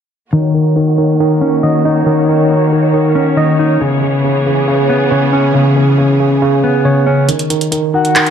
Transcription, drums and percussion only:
0, 0, Header, 1, 2, 480
1, 0, Start_track
1, 0, Tempo, 434783
1, 364, Time_signature, 4, 2, 24, 8
1, 9165, End_track
2, 0, Start_track
2, 0, Title_t, "Drums"
2, 8044, Note_on_c, 9, 42, 72
2, 8154, Note_off_c, 9, 42, 0
2, 8162, Note_on_c, 9, 42, 56
2, 8272, Note_off_c, 9, 42, 0
2, 8283, Note_on_c, 9, 42, 83
2, 8393, Note_off_c, 9, 42, 0
2, 8404, Note_on_c, 9, 42, 60
2, 8514, Note_off_c, 9, 42, 0
2, 8523, Note_on_c, 9, 42, 83
2, 8634, Note_off_c, 9, 42, 0
2, 8885, Note_on_c, 9, 42, 57
2, 8995, Note_off_c, 9, 42, 0
2, 9004, Note_on_c, 9, 39, 112
2, 9005, Note_on_c, 9, 42, 79
2, 9115, Note_off_c, 9, 39, 0
2, 9115, Note_off_c, 9, 42, 0
2, 9124, Note_on_c, 9, 42, 60
2, 9165, Note_off_c, 9, 42, 0
2, 9165, End_track
0, 0, End_of_file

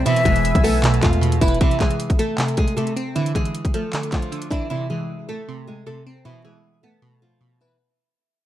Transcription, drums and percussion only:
0, 0, Header, 1, 2, 480
1, 0, Start_track
1, 0, Key_signature, 0, "minor"
1, 0, Tempo, 387097
1, 74, Time_signature, 4, 2, 24, 8
1, 10480, End_track
2, 0, Start_track
2, 0, Title_t, "Drums"
2, 75, Note_on_c, 9, 42, 76
2, 199, Note_off_c, 9, 42, 0
2, 203, Note_on_c, 9, 42, 55
2, 315, Note_on_c, 9, 36, 90
2, 320, Note_off_c, 9, 42, 0
2, 320, Note_on_c, 9, 42, 75
2, 439, Note_off_c, 9, 36, 0
2, 443, Note_off_c, 9, 42, 0
2, 443, Note_on_c, 9, 42, 59
2, 557, Note_off_c, 9, 42, 0
2, 557, Note_on_c, 9, 42, 90
2, 681, Note_off_c, 9, 42, 0
2, 683, Note_on_c, 9, 36, 106
2, 686, Note_on_c, 9, 42, 68
2, 800, Note_on_c, 9, 46, 88
2, 807, Note_off_c, 9, 36, 0
2, 810, Note_off_c, 9, 42, 0
2, 924, Note_off_c, 9, 46, 0
2, 1036, Note_on_c, 9, 39, 110
2, 1038, Note_on_c, 9, 42, 93
2, 1160, Note_off_c, 9, 39, 0
2, 1162, Note_off_c, 9, 42, 0
2, 1162, Note_on_c, 9, 42, 55
2, 1271, Note_off_c, 9, 42, 0
2, 1271, Note_on_c, 9, 42, 74
2, 1276, Note_on_c, 9, 36, 97
2, 1276, Note_on_c, 9, 39, 91
2, 1395, Note_off_c, 9, 42, 0
2, 1400, Note_off_c, 9, 36, 0
2, 1400, Note_off_c, 9, 39, 0
2, 1400, Note_on_c, 9, 42, 54
2, 1524, Note_off_c, 9, 42, 0
2, 1524, Note_on_c, 9, 42, 75
2, 1638, Note_off_c, 9, 42, 0
2, 1638, Note_on_c, 9, 42, 65
2, 1754, Note_off_c, 9, 42, 0
2, 1754, Note_on_c, 9, 36, 102
2, 1754, Note_on_c, 9, 42, 77
2, 1835, Note_off_c, 9, 42, 0
2, 1835, Note_on_c, 9, 42, 62
2, 1878, Note_off_c, 9, 36, 0
2, 1915, Note_off_c, 9, 42, 0
2, 1915, Note_on_c, 9, 42, 45
2, 1994, Note_off_c, 9, 42, 0
2, 1994, Note_on_c, 9, 42, 71
2, 1995, Note_on_c, 9, 36, 126
2, 2118, Note_off_c, 9, 42, 0
2, 2119, Note_off_c, 9, 36, 0
2, 2124, Note_on_c, 9, 42, 54
2, 2235, Note_on_c, 9, 36, 88
2, 2235, Note_on_c, 9, 39, 98
2, 2240, Note_off_c, 9, 42, 0
2, 2240, Note_on_c, 9, 42, 71
2, 2359, Note_off_c, 9, 36, 0
2, 2359, Note_off_c, 9, 39, 0
2, 2363, Note_off_c, 9, 42, 0
2, 2363, Note_on_c, 9, 42, 56
2, 2476, Note_off_c, 9, 42, 0
2, 2476, Note_on_c, 9, 42, 83
2, 2600, Note_off_c, 9, 42, 0
2, 2602, Note_on_c, 9, 36, 104
2, 2606, Note_on_c, 9, 42, 66
2, 2718, Note_off_c, 9, 42, 0
2, 2718, Note_on_c, 9, 42, 85
2, 2726, Note_off_c, 9, 36, 0
2, 2842, Note_off_c, 9, 42, 0
2, 2954, Note_on_c, 9, 39, 107
2, 2956, Note_on_c, 9, 42, 91
2, 3078, Note_off_c, 9, 39, 0
2, 3080, Note_off_c, 9, 42, 0
2, 3080, Note_on_c, 9, 42, 52
2, 3190, Note_off_c, 9, 42, 0
2, 3190, Note_on_c, 9, 42, 70
2, 3195, Note_on_c, 9, 36, 98
2, 3314, Note_off_c, 9, 42, 0
2, 3318, Note_on_c, 9, 42, 52
2, 3319, Note_off_c, 9, 36, 0
2, 3442, Note_off_c, 9, 42, 0
2, 3443, Note_on_c, 9, 42, 73
2, 3558, Note_off_c, 9, 42, 0
2, 3558, Note_on_c, 9, 42, 61
2, 3682, Note_off_c, 9, 42, 0
2, 3682, Note_on_c, 9, 42, 69
2, 3806, Note_off_c, 9, 42, 0
2, 3916, Note_on_c, 9, 42, 72
2, 4040, Note_off_c, 9, 42, 0
2, 4044, Note_on_c, 9, 42, 53
2, 4154, Note_on_c, 9, 36, 90
2, 4161, Note_off_c, 9, 42, 0
2, 4161, Note_on_c, 9, 42, 71
2, 4278, Note_off_c, 9, 36, 0
2, 4283, Note_off_c, 9, 42, 0
2, 4283, Note_on_c, 9, 42, 56
2, 4397, Note_off_c, 9, 42, 0
2, 4397, Note_on_c, 9, 42, 84
2, 4521, Note_off_c, 9, 42, 0
2, 4522, Note_on_c, 9, 36, 98
2, 4527, Note_on_c, 9, 42, 63
2, 4639, Note_off_c, 9, 42, 0
2, 4639, Note_on_c, 9, 42, 81
2, 4646, Note_off_c, 9, 36, 0
2, 4763, Note_off_c, 9, 42, 0
2, 4875, Note_on_c, 9, 39, 106
2, 4877, Note_on_c, 9, 42, 86
2, 4999, Note_off_c, 9, 39, 0
2, 5001, Note_off_c, 9, 42, 0
2, 5001, Note_on_c, 9, 42, 52
2, 5109, Note_off_c, 9, 42, 0
2, 5109, Note_on_c, 9, 42, 69
2, 5115, Note_on_c, 9, 36, 97
2, 5115, Note_on_c, 9, 39, 87
2, 5233, Note_off_c, 9, 42, 0
2, 5238, Note_on_c, 9, 42, 53
2, 5239, Note_off_c, 9, 36, 0
2, 5239, Note_off_c, 9, 39, 0
2, 5362, Note_off_c, 9, 42, 0
2, 5362, Note_on_c, 9, 42, 73
2, 5476, Note_off_c, 9, 42, 0
2, 5476, Note_on_c, 9, 42, 63
2, 5593, Note_on_c, 9, 36, 92
2, 5600, Note_off_c, 9, 42, 0
2, 5601, Note_on_c, 9, 42, 73
2, 5717, Note_off_c, 9, 36, 0
2, 5725, Note_off_c, 9, 42, 0
2, 10480, End_track
0, 0, End_of_file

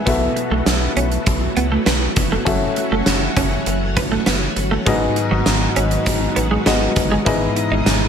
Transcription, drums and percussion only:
0, 0, Header, 1, 2, 480
1, 0, Start_track
1, 0, Tempo, 600000
1, 53, Time_signature, 4, 2, 24, 8
1, 6466, End_track
2, 0, Start_track
2, 0, Title_t, "Drums"
2, 53, Note_on_c, 9, 36, 102
2, 53, Note_on_c, 9, 42, 90
2, 133, Note_off_c, 9, 36, 0
2, 133, Note_off_c, 9, 42, 0
2, 292, Note_on_c, 9, 42, 71
2, 372, Note_off_c, 9, 42, 0
2, 531, Note_on_c, 9, 38, 99
2, 533, Note_on_c, 9, 42, 75
2, 611, Note_off_c, 9, 38, 0
2, 613, Note_off_c, 9, 42, 0
2, 773, Note_on_c, 9, 42, 57
2, 853, Note_off_c, 9, 42, 0
2, 892, Note_on_c, 9, 42, 44
2, 972, Note_off_c, 9, 42, 0
2, 1011, Note_on_c, 9, 42, 80
2, 1014, Note_on_c, 9, 36, 94
2, 1091, Note_off_c, 9, 42, 0
2, 1094, Note_off_c, 9, 36, 0
2, 1252, Note_on_c, 9, 42, 63
2, 1332, Note_off_c, 9, 42, 0
2, 1490, Note_on_c, 9, 38, 95
2, 1490, Note_on_c, 9, 42, 68
2, 1570, Note_off_c, 9, 38, 0
2, 1570, Note_off_c, 9, 42, 0
2, 1729, Note_on_c, 9, 42, 70
2, 1733, Note_on_c, 9, 36, 89
2, 1809, Note_off_c, 9, 42, 0
2, 1813, Note_off_c, 9, 36, 0
2, 1971, Note_on_c, 9, 42, 84
2, 1972, Note_on_c, 9, 36, 102
2, 2051, Note_off_c, 9, 42, 0
2, 2052, Note_off_c, 9, 36, 0
2, 2211, Note_on_c, 9, 42, 74
2, 2291, Note_off_c, 9, 42, 0
2, 2449, Note_on_c, 9, 38, 100
2, 2451, Note_on_c, 9, 42, 77
2, 2529, Note_off_c, 9, 38, 0
2, 2531, Note_off_c, 9, 42, 0
2, 2692, Note_on_c, 9, 36, 77
2, 2692, Note_on_c, 9, 42, 64
2, 2772, Note_off_c, 9, 36, 0
2, 2772, Note_off_c, 9, 42, 0
2, 2931, Note_on_c, 9, 42, 77
2, 3011, Note_off_c, 9, 42, 0
2, 3173, Note_on_c, 9, 36, 84
2, 3173, Note_on_c, 9, 42, 64
2, 3253, Note_off_c, 9, 36, 0
2, 3253, Note_off_c, 9, 42, 0
2, 3410, Note_on_c, 9, 38, 91
2, 3410, Note_on_c, 9, 42, 71
2, 3490, Note_off_c, 9, 38, 0
2, 3490, Note_off_c, 9, 42, 0
2, 3652, Note_on_c, 9, 42, 73
2, 3732, Note_off_c, 9, 42, 0
2, 3891, Note_on_c, 9, 42, 88
2, 3892, Note_on_c, 9, 36, 106
2, 3971, Note_off_c, 9, 42, 0
2, 3972, Note_off_c, 9, 36, 0
2, 4130, Note_on_c, 9, 42, 75
2, 4210, Note_off_c, 9, 42, 0
2, 4368, Note_on_c, 9, 38, 103
2, 4370, Note_on_c, 9, 42, 74
2, 4448, Note_off_c, 9, 38, 0
2, 4450, Note_off_c, 9, 42, 0
2, 4610, Note_on_c, 9, 42, 58
2, 4690, Note_off_c, 9, 42, 0
2, 4728, Note_on_c, 9, 42, 43
2, 4808, Note_off_c, 9, 42, 0
2, 4849, Note_on_c, 9, 42, 86
2, 4852, Note_on_c, 9, 36, 92
2, 4929, Note_off_c, 9, 42, 0
2, 4932, Note_off_c, 9, 36, 0
2, 5091, Note_on_c, 9, 42, 63
2, 5171, Note_off_c, 9, 42, 0
2, 5329, Note_on_c, 9, 38, 99
2, 5329, Note_on_c, 9, 42, 72
2, 5409, Note_off_c, 9, 38, 0
2, 5409, Note_off_c, 9, 42, 0
2, 5568, Note_on_c, 9, 42, 77
2, 5571, Note_on_c, 9, 36, 84
2, 5648, Note_off_c, 9, 42, 0
2, 5651, Note_off_c, 9, 36, 0
2, 5810, Note_on_c, 9, 42, 89
2, 5811, Note_on_c, 9, 36, 111
2, 5890, Note_off_c, 9, 42, 0
2, 5891, Note_off_c, 9, 36, 0
2, 6051, Note_on_c, 9, 42, 74
2, 6131, Note_off_c, 9, 42, 0
2, 6290, Note_on_c, 9, 38, 94
2, 6292, Note_on_c, 9, 42, 75
2, 6370, Note_off_c, 9, 38, 0
2, 6372, Note_off_c, 9, 42, 0
2, 6466, End_track
0, 0, End_of_file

